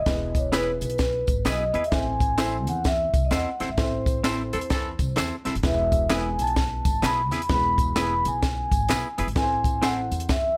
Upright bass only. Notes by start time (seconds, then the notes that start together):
0.06 E1
0.82 B1
1.28 G#1
1.45 B1
1.74 E2
1.92 A1
2.67 E2
3.14 C2
3.32 E2
3.61 F#1
3.69 G#1
3.78 A1
4.54 E2
4.99 C2
5.18 E2
5.46 E1
5.55 F#1
5.64 E1
6.39 B1
6.85 G#1
7.03 B1
7.32 E2
7.50 E1
8.25 B1
8.72 G#1
8.90 B1
9.19 F#1
9.27 G#1
10.11 E2